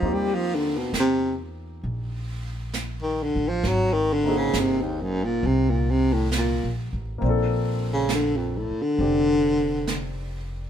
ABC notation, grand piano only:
X:1
M:4/4
L:1/8
Q:"Swing" 1/4=67
K:Bb
V:1 name="Grand piano"
[B,CEFG]8 | z [B,CE_G_A]6- [B,CEGA] | [B,CDFA]4 [CDG]4 |]